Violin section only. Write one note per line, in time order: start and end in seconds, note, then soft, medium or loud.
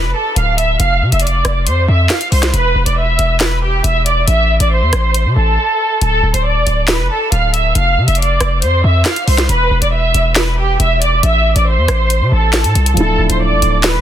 0.00 0.13 B4 medium
0.00 0.14 B5 medium
0.15 0.35 A4 medium
0.15 0.35 A5 medium
0.36 0.57 F5 medium
0.36 0.57 F6 medium
0.58 0.78 E5 medium
0.58 0.79 E6 medium
0.79 1.10 F5 loud
0.79 1.11 F6 medium
1.12 1.22 E5 medium
1.12 1.23 E6 medium
1.23 1.64 D5 medium
1.23 1.64 D6 medium
1.66 1.87 C5 medium
1.66 1.87 C6 medium
1.89 2.09 E5 medium
1.89 2.09 E6 medium
2.10 2.31 F5 medium
2.10 2.31 F6 medium
2.32 2.52 C5 medium
2.32 2.53 C6 medium
2.54 2.84 B4 loud
2.54 2.85 B5 medium
2.86 2.96 D5 medium
2.86 2.97 D6 medium
2.97 3.38 E5 medium
2.97 3.38 E6 medium
3.41 3.61 B4 medium
3.41 3.61 B5 medium
3.63 3.83 G4 medium
3.63 3.83 G5 medium
3.84 4.04 E5 medium
3.84 4.05 E6 medium
4.06 4.26 D5 medium
4.06 4.27 D6 medium
4.28 4.58 E5 loud
4.28 4.59 E6 medium
4.60 4.70 D5 medium
4.60 4.71 D6 medium
4.71 5.32 C5 medium
4.71 5.33 C6 medium
5.36 5.97 A4 medium
5.36 5.98 A5 medium
6.01 6.32 A4 loud
6.01 6.33 A5 medium
6.34 6.44 C5 medium
6.34 6.45 C6 soft
6.45 6.86 D5 medium
6.45 6.86 D6 medium
6.89 7.09 B4 medium
6.89 7.09 B5 medium
7.10 7.30 A4 medium
7.10 7.31 A5 medium
7.32 7.52 F5 medium
7.32 7.53 F6 medium
7.54 7.74 E5 medium
7.54 7.74 E6 medium
7.75 8.06 F5 loud
7.75 8.06 F6 medium
8.07 8.18 E5 medium
8.07 8.18 E6 medium
8.19 8.60 D5 medium
8.19 8.60 D6 medium
8.62 8.82 C5 medium
8.62 8.83 C6 medium
8.84 9.04 E5 medium
8.84 9.05 E6 medium
9.06 9.26 F5 medium
9.06 9.27 F6 medium
9.28 9.48 C5 medium
9.28 9.48 C6 medium
9.49 9.80 B4 loud
9.49 9.80 B5 medium
9.82 9.92 D5 medium
9.82 9.92 D6 medium
9.92 10.33 E5 medium
9.92 10.34 E6 medium
10.36 10.56 B4 medium
10.36 10.57 B5 medium
10.58 10.78 G4 medium
10.58 10.79 G5 medium
10.80 11.00 E5 medium
10.80 11.00 E6 medium
11.02 11.22 D5 medium
11.02 11.22 D6 medium
11.23 11.54 E5 loud
11.23 11.54 E6 medium
11.56 11.66 D5 medium
11.56 11.66 D6 medium
11.67 12.28 C5 medium
11.67 12.28 C6 medium
12.32 12.93 A4 medium
12.32 12.94 A5 medium
12.97 13.28 A4 loud
12.97 13.28 A5 medium
13.29 13.40 C5 medium
13.29 13.40 C6 medium
13.40 13.81 D5 medium
13.40 13.82 D6 medium
13.84 14.01 B4 medium
13.84 14.01 B5 medium